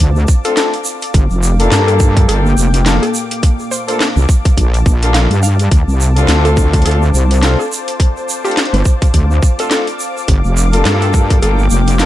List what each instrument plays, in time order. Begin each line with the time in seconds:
Already playing: analog synth pad C5 F5 A5 D6
0.00 wobble bass D2, kick, closed hi-hat
0.16 shaker
0.28 kick, shaker
0.44 horn section A3 C4 D4 F4 A4, synth pluck A4, closed hi-hat, shaker
0.57 synth pluck A4, snare, closed hi-hat, shaker
0.74 closed hi-hat, shaker
0.85 shaker
1.02 closed hi-hat, shaker
1.14 wobble bass G1, analog synth pad A#3 G5, kick, cross-stick, closed hi-hat, shaker
1.30 wobble bass F1, shaker
1.43 shaker
1.59 horn section A3 A#3 D4 F4 A4, closed hi-hat, shaker
1.72 wobble bass G2, snare, closed hi-hat, shaker
1.88 synth pluck A4, closed hi-hat, shaker
2.00 kick, cross-stick, shaker
2.17 kick, closed hi-hat, shaker
2.28 wobble bass G1, horn section A3 A#3 D4 F4 A4, synth pluck A4, closed hi-hat, shaker
2.46 shaker
2.57 wobble bass F1, shaker
2.74 closed hi-hat, shaker
2.85 horn section A3 A#3 D4 F4 A4, snare, closed hi-hat, shaker
3.02 synth pluck A4, closed hi-hat, shaker
3.15 shaker
3.31 closed hi-hat, shaker
3.43 analog synth pad A5, kick, cross-stick, closed hi-hat, shaker
3.59 shaker
3.71 synth pluck C5, shaker
3.88 horn section A3 A#3 D4 F4 A4, synth pluck C5, closed hi-hat, shaker
4.00 snare, closed hi-hat, shaker
4.16 wobble bass C2, shaker
4.29 kick, shaker
4.45 kick, closed hi-hat, shaker
4.57 wobble bass A#1, kick, closed hi-hat, shaker
4.74 closed hi-hat, shaker
4.86 wobble bass A#1, kick, shaker
5.02 horn section A3 A#3 D4 F4 A4, closed hi-hat, shaker
5.14 synth pluck F5, snare, closed hi-hat, shaker
5.30 wobble bass G2, closed hi-hat, shaker
5.43 synth pluck F5, shaker
5.59 closed hi-hat, shaker
5.71 wobble bass D2, analog synth pad C5 F5 D6, kick, cross-stick, closed hi-hat, shaker
5.88 wobble bass C2, shaker
6.01 shaker
6.16 horn section A3 C4 D4 F4 A4, closed hi-hat, shaker
6.28 wobble bass D2, snare, closed hi-hat, shaker
6.45 synth pluck A4, closed hi-hat, shaker
6.57 kick, cross-stick, shaker
6.73 kick, closed hi-hat, shaker
6.82 wobble bass D2, horn section A3 C4 D4 F4 A4, synth pluck A4, closed hi-hat
6.86 closed hi-hat, shaker
6.91 closed hi-hat
7.02 shaker
7.14 wobble bass C2, shaker
7.31 closed hi-hat, shaker
7.42 horn section A3 C4 D4 F4 A4, snare, closed hi-hat, shaker
7.59 synth pluck A4, shaker
7.72 shaker
7.88 closed hi-hat, shaker
8.00 kick, cross-stick, closed hi-hat, shaker
8.17 shaker
8.29 shaker
8.45 horn section A3 C4 D4 F4 A4, synth pluck G4, closed hi-hat, shaker
8.51 closed hi-hat
8.57 snare, closed hi-hat, shaker
8.65 closed hi-hat
8.73 wobble bass G1, synth pluck C5, closed hi-hat, shaker
8.85 kick, shaker
9.02 kick, closed hi-hat, shaker
9.14 wobble bass D2, kick, closed hi-hat, shaker
9.31 shaker
9.42 kick, shaker
9.59 horn section A3 C4 D4 F4 A4, synth pluck A4, closed hi-hat, shaker
9.71 synth pluck A4, snare, closed hi-hat, shaker
9.87 closed hi-hat, shaker
10.00 shaker
10.17 shaker
10.28 wobble bass G1, analog synth pad A#3 G5, kick, cross-stick, closed hi-hat, shaker
10.44 wobble bass F1, shaker
10.57 shaker
10.73 horn section A3 A#3 D4 F4 A4, closed hi-hat, shaker
10.85 wobble bass G2, snare, closed hi-hat, shaker
11.02 synth pluck A4, closed hi-hat, shaker
11.14 kick, cross-stick, shaker
11.30 kick, closed hi-hat, shaker
11.42 wobble bass G1, horn section A3 A#3 D4 F4 A4, synth pluck A4, closed hi-hat, shaker
11.59 shaker
11.70 wobble bass F1, shaker
11.88 closed hi-hat, shaker
11.99 horn section A3 A#3 D4 F4 A4, snare, closed hi-hat, shaker